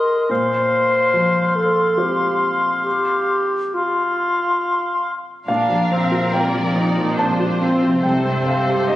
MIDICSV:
0, 0, Header, 1, 10, 480
1, 0, Start_track
1, 0, Key_signature, -2, "major"
1, 0, Tempo, 835655
1, 171, Time_signature, 3, 2, 24, 8
1, 1133, Tempo, 878477
1, 3053, Tempo, 846262
1, 5022, End_track
2, 0, Start_track
2, 0, Title_t, "Flute"
2, 0, Program_c, 0, 73
2, 0, Note_on_c, 0, 84, 53
2, 161, Note_off_c, 0, 84, 0
2, 167, Note_on_c, 0, 84, 55
2, 1942, Note_off_c, 0, 84, 0
2, 2100, Note_on_c, 0, 84, 46
2, 2859, Note_off_c, 0, 84, 0
2, 5022, End_track
3, 0, Start_track
3, 0, Title_t, "Oboe"
3, 0, Program_c, 1, 68
3, 0, Note_on_c, 1, 75, 46
3, 162, Note_off_c, 1, 75, 0
3, 176, Note_on_c, 1, 77, 57
3, 2011, Note_off_c, 1, 77, 0
3, 2104, Note_on_c, 1, 77, 48
3, 2861, Note_off_c, 1, 77, 0
3, 5022, End_track
4, 0, Start_track
4, 0, Title_t, "Violin section"
4, 0, Program_c, 2, 48
4, 3050, Note_on_c, 2, 77, 46
4, 3507, Note_off_c, 2, 77, 0
4, 3526, Note_on_c, 2, 74, 47
4, 4008, Note_on_c, 2, 72, 44
4, 4010, Note_off_c, 2, 74, 0
4, 4486, Note_off_c, 2, 72, 0
4, 4493, Note_on_c, 2, 72, 52
4, 5022, Note_off_c, 2, 72, 0
4, 5022, End_track
5, 0, Start_track
5, 0, Title_t, "Clarinet"
5, 0, Program_c, 3, 71
5, 0, Note_on_c, 3, 70, 71
5, 171, Note_off_c, 3, 70, 0
5, 174, Note_on_c, 3, 72, 82
5, 894, Note_on_c, 3, 69, 64
5, 902, Note_off_c, 3, 72, 0
5, 1137, Note_on_c, 3, 67, 52
5, 1145, Note_off_c, 3, 69, 0
5, 1453, Note_off_c, 3, 67, 0
5, 1610, Note_on_c, 3, 67, 65
5, 2100, Note_on_c, 3, 65, 48
5, 2108, Note_off_c, 3, 67, 0
5, 2816, Note_off_c, 3, 65, 0
5, 5022, End_track
6, 0, Start_track
6, 0, Title_t, "Violin section"
6, 0, Program_c, 4, 48
6, 3054, Note_on_c, 4, 70, 44
6, 3990, Note_off_c, 4, 70, 0
6, 4016, Note_on_c, 4, 65, 48
6, 4496, Note_on_c, 4, 69, 42
6, 4498, Note_off_c, 4, 65, 0
6, 4974, Note_off_c, 4, 69, 0
6, 4978, Note_on_c, 4, 67, 46
6, 5022, Note_off_c, 4, 67, 0
6, 5022, End_track
7, 0, Start_track
7, 0, Title_t, "Viola section"
7, 0, Program_c, 5, 48
7, 3052, Note_on_c, 5, 62, 47
7, 3275, Note_off_c, 5, 62, 0
7, 3294, Note_on_c, 5, 60, 45
7, 3532, Note_off_c, 5, 60, 0
7, 3532, Note_on_c, 5, 58, 43
7, 3769, Note_on_c, 5, 63, 44
7, 3771, Note_off_c, 5, 58, 0
7, 4011, Note_off_c, 5, 63, 0
7, 4011, Note_on_c, 5, 62, 43
7, 4253, Note_off_c, 5, 62, 0
7, 4255, Note_on_c, 5, 60, 48
7, 4491, Note_off_c, 5, 60, 0
7, 4498, Note_on_c, 5, 60, 45
7, 4965, Note_off_c, 5, 60, 0
7, 4975, Note_on_c, 5, 63, 39
7, 5022, Note_off_c, 5, 63, 0
7, 5022, End_track
8, 0, Start_track
8, 0, Title_t, "Grand piano"
8, 0, Program_c, 6, 0
8, 0, Control_c, 6, 64, 127
8, 0, Note_on_c, 6, 63, 36
8, 0, Note_on_c, 6, 67, 36
8, 146, Note_off_c, 6, 63, 0
8, 148, Note_off_c, 6, 67, 0
8, 170, Note_on_c, 6, 46, 49
8, 180, Control_c, 6, 64, 0
8, 288, Control_c, 6, 64, 127
8, 652, Note_on_c, 6, 53, 42
8, 1134, Note_on_c, 6, 60, 36
8, 1134, Note_on_c, 6, 65, 34
8, 1137, Note_on_c, 6, 72, 36
8, 1421, Note_off_c, 6, 53, 0
8, 1590, Note_off_c, 6, 46, 0
8, 1623, Control_c, 6, 64, 0
8, 1705, Control_c, 6, 64, 127
8, 3031, Note_off_c, 6, 60, 0
8, 3031, Note_off_c, 6, 65, 0
8, 3032, Note_off_c, 6, 72, 0
8, 3051, Note_on_c, 6, 77, 58
8, 3052, Note_on_c, 6, 46, 43
8, 3062, Control_c, 6, 64, 0
8, 3165, Control_c, 6, 64, 127
8, 3169, Note_on_c, 6, 53, 34
8, 3295, Note_on_c, 6, 60, 35
8, 3362, Note_off_c, 6, 53, 0
8, 3410, Note_on_c, 6, 65, 34
8, 3484, Note_off_c, 6, 60, 0
8, 3508, Note_off_c, 6, 77, 0
8, 3534, Note_on_c, 6, 79, 57
8, 3536, Note_on_c, 6, 60, 35
8, 3602, Note_off_c, 6, 65, 0
8, 3652, Note_on_c, 6, 53, 33
8, 3725, Note_off_c, 6, 60, 0
8, 3771, Note_on_c, 6, 60, 35
8, 3844, Note_off_c, 6, 53, 0
8, 3895, Note_on_c, 6, 53, 34
8, 3964, Note_off_c, 6, 60, 0
8, 3991, Note_off_c, 6, 79, 0
8, 4018, Note_on_c, 6, 60, 32
8, 4018, Note_on_c, 6, 81, 69
8, 4086, Note_off_c, 6, 53, 0
8, 4136, Note_on_c, 6, 65, 36
8, 4208, Note_off_c, 6, 60, 0
8, 4259, Note_on_c, 6, 60, 33
8, 4328, Note_off_c, 6, 65, 0
8, 4382, Note_on_c, 6, 53, 33
8, 4450, Note_off_c, 6, 60, 0
8, 4473, Note_off_c, 6, 46, 0
8, 4476, Note_off_c, 6, 81, 0
8, 4495, Note_on_c, 6, 36, 41
8, 4497, Note_on_c, 6, 79, 61
8, 4499, Note_off_c, 6, 53, 0
8, 4506, Control_c, 6, 64, 0
8, 4613, Control_c, 6, 64, 127
8, 4622, Note_on_c, 6, 43, 34
8, 4720, Note_off_c, 6, 79, 0
8, 4738, Note_on_c, 6, 60, 36
8, 4746, Note_on_c, 6, 77, 56
8, 4810, Note_off_c, 6, 43, 0
8, 4856, Note_on_c, 6, 67, 36
8, 4927, Note_off_c, 6, 60, 0
8, 4962, Note_off_c, 6, 77, 0
8, 4978, Note_on_c, 6, 75, 56
8, 4979, Note_on_c, 6, 60, 39
8, 5022, Note_off_c, 6, 36, 0
8, 5022, Note_off_c, 6, 60, 0
8, 5022, Note_off_c, 6, 67, 0
8, 5022, Note_off_c, 6, 75, 0
8, 5022, End_track
9, 0, Start_track
9, 0, Title_t, "Cello section"
9, 0, Program_c, 7, 48
9, 3057, Note_on_c, 7, 46, 44
9, 4475, Note_off_c, 7, 46, 0
9, 4499, Note_on_c, 7, 48, 44
9, 5022, Note_off_c, 7, 48, 0
9, 5022, End_track
10, 0, Start_track
10, 0, Title_t, "Double bass section"
10, 0, Program_c, 8, 48
10, 3053, Note_on_c, 8, 34, 45
10, 4473, Note_off_c, 8, 34, 0
10, 4495, Note_on_c, 8, 36, 46
10, 5022, Note_off_c, 8, 36, 0
10, 5022, End_track
0, 0, End_of_file